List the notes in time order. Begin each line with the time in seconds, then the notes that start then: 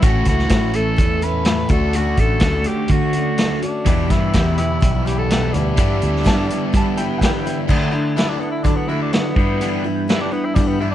0.00 A1 A2 E3 A3 C#4 F#4 A4 E5 C#6, kick, closed hi-hat
0.05 E4 A4
0.25 C#2 C#4 E4 F#4, kick, closed hi-hat
0.31 A3
0.39 snare
0.49 A1 A2 E3 A3 C#4 E4, kick, snare, closed hi-hat
0.73 A3 C#4 E4 A4, closed hi-hat
0.96 E2 E3 A3 C#4, kick, closed hi-hat
1.01 E4
1.22 A3 C#4 E4 B4, closed hi-hat
1.45 A2 E3, snare, closed hi-hat
1.49 A3 C#4 E4
1.69 D2 D3 F#4 A4 D5, kick, closed hi-hat
1.73 A3 C#4 D4
1.93 D3 A3 C#4 F#4, closed hi-hat
2.17 A1 F#4 A4, kick, closed hi-hat
2.21 A3 C#4
2.40 D2 D3 A3, kick, snare, closed hi-hat
2.44 C#4 F#4
2.64 F#4 G4, closed hi-hat
2.68 A3 C#4
2.88 D3 A3 F#4, kick, closed hi-hat
2.92 C#4 F#4
3.13 F#4, closed hi-hat
3.17 A3 C#4
3.38 D3 A3 C#4 F#4, snare, closed hi-hat
3.62 A3 C#4 D4 F#4, closed hi-hat
3.86 E2 B2 E3 G3 B3 E4 G4 E5 B5, kick, closed hi-hat
4.10 G2 E3 G3 B3 E4, kick, snare, closed hi-hat
4.33 E2 B2 E3 G3 B3 E4, kick, snare, closed hi-hat
4.58 E3 G3 B3 E4, closed hi-hat
4.81 B1 E3 G3 B3 E4, kick, closed hi-hat
5.06 E3 G3 B3 E4 G4, closed hi-hat
5.18 A4
5.30 E2 B2 E3 G3 B3 E4, snare, closed hi-hat
5.53 D2 B3 D4 E4, closed hi-hat
5.58 E3 G3
5.77 G2 D3 E3 G3 B3 D4 E4 G4, kick, closed hi-hat
6.02 D2 E3 G3 B3 E4, closed hi-hat
6.16 snare
6.24 G2 D3 E3 G3 B3 E4 A5, kick, snare, closed hi-hat
6.49 E3 G3 B3 E4, closed hi-hat
6.73 E3 G3 B3 E4 A5, kick, closed hi-hat
6.97 E3 G3 B3 E4 G5, closed hi-hat
7.18 G2 F#5, kick, closed hi-hat
7.23 D3 E3 G3 B3 E4 G5, snare
7.46 E3 G3 B3 E4, closed hi-hat
7.68 D3 F#3 A3 D4 E4 F#4 D5 F#5, kick, crash
7.92 D3 A3 D4 E4
8.16 D3 F#3 A3 D4 E4 F#4, snare, closed hi-hat
8.29 D4
8.40 D3 A3 B3 D4 E4
8.52 E4
8.63 D3 F#3 A3 D4 E4, kick, closed hi-hat
8.76 B3
8.88 D3 A3 D4 E4 F#4
9.02 D4
9.12 D3 F#3 A3 B3, snare, closed hi-hat
9.16 D4 E4
9.35 G2 B3 D4 E4 B4 G5, kick
9.40 E3 G3 B3
9.61 G2 D3 E3 G3 B3 D4 E4, closed hi-hat
9.84 E3 G3 B3 D4 E4
10.08 E3 G3 B3 D4 E4, snare, closed hi-hat
10.21 D4
10.32 E3 G3 B3 D4 E4
10.45 E4
10.55 G2 D3 E3 G3 B3 D4 E4, kick, closed hi-hat
10.68 B3
10.81 E3 G3 B3 D4 E4
10.91 D4